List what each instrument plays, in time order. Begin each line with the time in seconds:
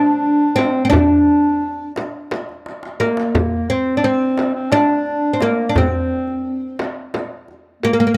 Already playing: oud D4, clarinet D4
0.24 darbuka ka
0.56 oud C4, clarinet C4, darbuka tek, frame drum
0.66 clarinet D4
0.71 clarinet C4
0.85 oud C4
0.90 oud D4, clarinet D4, darbuka dum, frame drum
0.99 clarinet C4
1.05 clarinet D4
1.44 darbuka ka
1.61 darbuka ka
1.96 darbuka tek, frame drum
2.31 darbuka tek, frame drum
2.49 darbuka ka
2.66 darbuka tek
2.83 darbuka ka
2.99 clarinet A#3, oud A#3, darbuka tek, frame drum
3.17 darbuka ka
3.35 darbuka dum, frame drum
3.69 clarinet C4, oud C4
3.86 darbuka ka
3.97 oud D4
4.03 clarinet C4, oud C4
4.38 darbuka tek, frame drum
4.55 clarinet C4
4.71 clarinet D4, oud D4, darbuka tek, frame drum
5.06 darbuka ka
5.33 oud C4
5.40 clarinet A#3, oud A#3, darbuka tek, frame drum
5.69 oud D4
5.74 clarinet C4, oud C4, darbuka dum, frame drum
6.28 darbuka ka
6.79 darbuka tek, frame drum
7.14 darbuka tek, frame drum
7.48 darbuka ka
7.83 clarinet A#3, oud A#3, frame drum
7.93 oud A#3
8.00 oud A#3
8.07 oud A#3